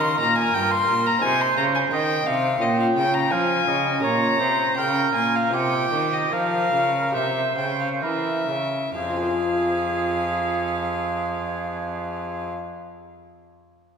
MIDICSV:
0, 0, Header, 1, 5, 480
1, 0, Start_track
1, 0, Key_signature, -4, "minor"
1, 0, Tempo, 686499
1, 1830, Time_signature, 4, 2, 24, 8
1, 1830, Tempo, 709220
1, 2790, Tempo, 751880
1, 3750, Tempo, 790514
1, 4230, Tempo, 847458
1, 5190, Tempo, 938967
1, 8233, End_track
2, 0, Start_track
2, 0, Title_t, "Violin"
2, 0, Program_c, 0, 40
2, 19, Note_on_c, 0, 84, 93
2, 136, Note_off_c, 0, 84, 0
2, 141, Note_on_c, 0, 82, 102
2, 262, Note_off_c, 0, 82, 0
2, 266, Note_on_c, 0, 80, 99
2, 381, Note_on_c, 0, 79, 101
2, 391, Note_off_c, 0, 80, 0
2, 495, Note_on_c, 0, 84, 103
2, 505, Note_off_c, 0, 79, 0
2, 742, Note_on_c, 0, 82, 95
2, 753, Note_off_c, 0, 84, 0
2, 855, Note_on_c, 0, 80, 112
2, 865, Note_off_c, 0, 82, 0
2, 986, Note_on_c, 0, 84, 98
2, 996, Note_off_c, 0, 80, 0
2, 1097, Note_off_c, 0, 84, 0
2, 1101, Note_on_c, 0, 82, 94
2, 1150, Note_off_c, 0, 82, 0
2, 1223, Note_on_c, 0, 80, 86
2, 1272, Note_off_c, 0, 80, 0
2, 1341, Note_on_c, 0, 79, 95
2, 1583, Note_on_c, 0, 77, 99
2, 1594, Note_off_c, 0, 79, 0
2, 1827, Note_on_c, 0, 75, 84
2, 1837, Note_off_c, 0, 77, 0
2, 1947, Note_off_c, 0, 75, 0
2, 1954, Note_on_c, 0, 77, 86
2, 2001, Note_off_c, 0, 77, 0
2, 2072, Note_on_c, 0, 79, 91
2, 2187, Note_on_c, 0, 82, 89
2, 2197, Note_off_c, 0, 79, 0
2, 2300, Note_on_c, 0, 80, 99
2, 2310, Note_off_c, 0, 82, 0
2, 2779, Note_off_c, 0, 80, 0
2, 2783, Note_on_c, 0, 82, 102
2, 3250, Note_off_c, 0, 82, 0
2, 3261, Note_on_c, 0, 79, 92
2, 3498, Note_off_c, 0, 79, 0
2, 3502, Note_on_c, 0, 80, 93
2, 3635, Note_on_c, 0, 77, 83
2, 3645, Note_off_c, 0, 80, 0
2, 3749, Note_on_c, 0, 79, 87
2, 3758, Note_off_c, 0, 77, 0
2, 4110, Note_on_c, 0, 75, 81
2, 4119, Note_off_c, 0, 79, 0
2, 4230, Note_on_c, 0, 77, 94
2, 4239, Note_off_c, 0, 75, 0
2, 4694, Note_off_c, 0, 77, 0
2, 4698, Note_on_c, 0, 76, 80
2, 4935, Note_off_c, 0, 76, 0
2, 4937, Note_on_c, 0, 79, 72
2, 5060, Note_off_c, 0, 79, 0
2, 5066, Note_on_c, 0, 77, 67
2, 5111, Note_off_c, 0, 77, 0
2, 5186, Note_on_c, 0, 76, 74
2, 5654, Note_off_c, 0, 76, 0
2, 5662, Note_on_c, 0, 77, 78
2, 7482, Note_off_c, 0, 77, 0
2, 8233, End_track
3, 0, Start_track
3, 0, Title_t, "Oboe"
3, 0, Program_c, 1, 68
3, 0, Note_on_c, 1, 70, 88
3, 849, Note_off_c, 1, 70, 0
3, 874, Note_on_c, 1, 72, 86
3, 1340, Note_off_c, 1, 72, 0
3, 1349, Note_on_c, 1, 75, 86
3, 1655, Note_off_c, 1, 75, 0
3, 1834, Note_on_c, 1, 79, 92
3, 2307, Note_on_c, 1, 77, 73
3, 2317, Note_off_c, 1, 79, 0
3, 2550, Note_on_c, 1, 75, 82
3, 2560, Note_off_c, 1, 77, 0
3, 2786, Note_off_c, 1, 75, 0
3, 2790, Note_on_c, 1, 73, 78
3, 3020, Note_off_c, 1, 73, 0
3, 3023, Note_on_c, 1, 72, 81
3, 3257, Note_off_c, 1, 72, 0
3, 3265, Note_on_c, 1, 70, 82
3, 3741, Note_off_c, 1, 70, 0
3, 3747, Note_on_c, 1, 67, 72
3, 4228, Note_on_c, 1, 70, 72
3, 4237, Note_off_c, 1, 67, 0
3, 4690, Note_on_c, 1, 72, 74
3, 4698, Note_off_c, 1, 70, 0
3, 5181, Note_off_c, 1, 72, 0
3, 5184, Note_on_c, 1, 70, 66
3, 5418, Note_off_c, 1, 70, 0
3, 5658, Note_on_c, 1, 68, 69
3, 7478, Note_off_c, 1, 68, 0
3, 8233, End_track
4, 0, Start_track
4, 0, Title_t, "Lute"
4, 0, Program_c, 2, 24
4, 0, Note_on_c, 2, 51, 63
4, 0, Note_on_c, 2, 58, 58
4, 0, Note_on_c, 2, 63, 60
4, 0, Note_on_c, 2, 67, 58
4, 123, Note_off_c, 2, 51, 0
4, 148, Note_on_c, 2, 46, 68
4, 363, Note_off_c, 2, 46, 0
4, 388, Note_on_c, 2, 43, 66
4, 603, Note_off_c, 2, 43, 0
4, 621, Note_on_c, 2, 46, 63
4, 820, Note_off_c, 2, 58, 0
4, 825, Note_off_c, 2, 63, 0
4, 830, Note_off_c, 2, 67, 0
4, 830, Note_on_c, 2, 60, 57
4, 839, Note_off_c, 2, 46, 0
4, 840, Note_on_c, 2, 63, 56
4, 850, Note_on_c, 2, 68, 55
4, 861, Note_on_c, 2, 48, 62
4, 1079, Note_off_c, 2, 48, 0
4, 1100, Note_on_c, 2, 49, 68
4, 1319, Note_off_c, 2, 49, 0
4, 1343, Note_on_c, 2, 51, 59
4, 1562, Note_off_c, 2, 51, 0
4, 1588, Note_on_c, 2, 48, 63
4, 1784, Note_off_c, 2, 60, 0
4, 1789, Note_off_c, 2, 63, 0
4, 1794, Note_off_c, 2, 68, 0
4, 1806, Note_off_c, 2, 48, 0
4, 1807, Note_on_c, 2, 61, 54
4, 1816, Note_on_c, 2, 65, 54
4, 1825, Note_on_c, 2, 70, 55
4, 1835, Note_on_c, 2, 46, 62
4, 2046, Note_off_c, 2, 46, 0
4, 2075, Note_on_c, 2, 49, 62
4, 2286, Note_off_c, 2, 49, 0
4, 2306, Note_on_c, 2, 53, 61
4, 2522, Note_off_c, 2, 53, 0
4, 2547, Note_on_c, 2, 49, 61
4, 2748, Note_off_c, 2, 61, 0
4, 2756, Note_off_c, 2, 65, 0
4, 2756, Note_on_c, 2, 61, 54
4, 2761, Note_off_c, 2, 70, 0
4, 2766, Note_off_c, 2, 49, 0
4, 2767, Note_on_c, 2, 67, 51
4, 2777, Note_on_c, 2, 70, 54
4, 2785, Note_on_c, 2, 46, 63
4, 2999, Note_off_c, 2, 46, 0
4, 3020, Note_on_c, 2, 48, 65
4, 3236, Note_off_c, 2, 48, 0
4, 3264, Note_on_c, 2, 49, 58
4, 3481, Note_off_c, 2, 49, 0
4, 3504, Note_on_c, 2, 46, 58
4, 3708, Note_off_c, 2, 61, 0
4, 3713, Note_off_c, 2, 67, 0
4, 3718, Note_off_c, 2, 70, 0
4, 3721, Note_on_c, 2, 60, 55
4, 3725, Note_off_c, 2, 46, 0
4, 3729, Note_on_c, 2, 65, 54
4, 3743, Note_on_c, 2, 70, 52
4, 3750, Note_on_c, 2, 48, 58
4, 3964, Note_off_c, 2, 48, 0
4, 3984, Note_on_c, 2, 51, 56
4, 4204, Note_off_c, 2, 51, 0
4, 4227, Note_on_c, 2, 53, 58
4, 4437, Note_off_c, 2, 53, 0
4, 4457, Note_on_c, 2, 49, 54
4, 4662, Note_off_c, 2, 60, 0
4, 4665, Note_off_c, 2, 65, 0
4, 4670, Note_on_c, 2, 60, 50
4, 4671, Note_off_c, 2, 70, 0
4, 4672, Note_off_c, 2, 49, 0
4, 4677, Note_on_c, 2, 67, 45
4, 4687, Note_on_c, 2, 70, 45
4, 4697, Note_on_c, 2, 48, 51
4, 4917, Note_off_c, 2, 48, 0
4, 4939, Note_on_c, 2, 49, 56
4, 5167, Note_off_c, 2, 49, 0
4, 5192, Note_on_c, 2, 52, 50
4, 5405, Note_off_c, 2, 52, 0
4, 5424, Note_on_c, 2, 49, 51
4, 5633, Note_off_c, 2, 60, 0
4, 5636, Note_off_c, 2, 67, 0
4, 5640, Note_off_c, 2, 70, 0
4, 5645, Note_off_c, 2, 49, 0
4, 5664, Note_on_c, 2, 53, 59
4, 5701, Note_on_c, 2, 60, 57
4, 5736, Note_on_c, 2, 65, 58
4, 5773, Note_on_c, 2, 68, 55
4, 5805, Note_off_c, 2, 68, 0
4, 5807, Note_on_c, 2, 72, 58
4, 5842, Note_off_c, 2, 72, 0
4, 5844, Note_on_c, 2, 68, 52
4, 7485, Note_off_c, 2, 53, 0
4, 7521, Note_off_c, 2, 60, 0
4, 7556, Note_off_c, 2, 65, 0
4, 7664, Note_off_c, 2, 68, 0
4, 8233, End_track
5, 0, Start_track
5, 0, Title_t, "Cello"
5, 0, Program_c, 3, 42
5, 0, Note_on_c, 3, 51, 82
5, 142, Note_off_c, 3, 51, 0
5, 146, Note_on_c, 3, 46, 80
5, 382, Note_off_c, 3, 46, 0
5, 386, Note_on_c, 3, 43, 73
5, 620, Note_off_c, 3, 43, 0
5, 624, Note_on_c, 3, 46, 74
5, 860, Note_off_c, 3, 46, 0
5, 865, Note_on_c, 3, 48, 83
5, 1100, Note_off_c, 3, 48, 0
5, 1105, Note_on_c, 3, 49, 75
5, 1339, Note_off_c, 3, 49, 0
5, 1343, Note_on_c, 3, 51, 73
5, 1581, Note_off_c, 3, 51, 0
5, 1587, Note_on_c, 3, 48, 79
5, 1825, Note_off_c, 3, 48, 0
5, 1830, Note_on_c, 3, 46, 85
5, 2062, Note_off_c, 3, 46, 0
5, 2065, Note_on_c, 3, 49, 78
5, 2305, Note_on_c, 3, 53, 71
5, 2315, Note_off_c, 3, 49, 0
5, 2543, Note_off_c, 3, 53, 0
5, 2547, Note_on_c, 3, 49, 72
5, 2786, Note_off_c, 3, 49, 0
5, 2789, Note_on_c, 3, 46, 79
5, 3019, Note_off_c, 3, 46, 0
5, 3024, Note_on_c, 3, 48, 68
5, 3256, Note_off_c, 3, 48, 0
5, 3260, Note_on_c, 3, 49, 71
5, 3498, Note_off_c, 3, 49, 0
5, 3503, Note_on_c, 3, 46, 71
5, 3741, Note_off_c, 3, 46, 0
5, 3744, Note_on_c, 3, 48, 75
5, 3980, Note_off_c, 3, 48, 0
5, 3984, Note_on_c, 3, 51, 67
5, 4222, Note_off_c, 3, 51, 0
5, 4225, Note_on_c, 3, 53, 65
5, 4454, Note_off_c, 3, 53, 0
5, 4459, Note_on_c, 3, 49, 66
5, 4695, Note_on_c, 3, 48, 69
5, 4703, Note_off_c, 3, 49, 0
5, 4934, Note_off_c, 3, 48, 0
5, 4937, Note_on_c, 3, 49, 64
5, 5187, Note_on_c, 3, 52, 61
5, 5195, Note_off_c, 3, 49, 0
5, 5419, Note_off_c, 3, 52, 0
5, 5422, Note_on_c, 3, 49, 62
5, 5659, Note_off_c, 3, 49, 0
5, 5665, Note_on_c, 3, 41, 75
5, 7486, Note_off_c, 3, 41, 0
5, 8233, End_track
0, 0, End_of_file